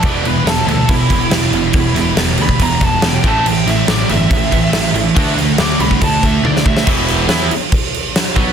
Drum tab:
CC |x-x-x-x-x-x-x-x-|x-x-x-x-x-x-x-x-|x-x-x-x-x-x-x-x-|x-x-x-x-x-x-----|
SD |----o-------o---|--o-o-------o---|--o-o-------o---|--o-o--------o-o|
T1 |----------------|----------------|----------------|------------o---|
BD |o-------o-o-----|o------oo-o---o-|--------o-o-----|o------oo-o---o-|

CC |x-x-x-x-x-x-x-x-|
SD |--o-o-------o---|
T1 |----------------|
BD |o-------o-----o-|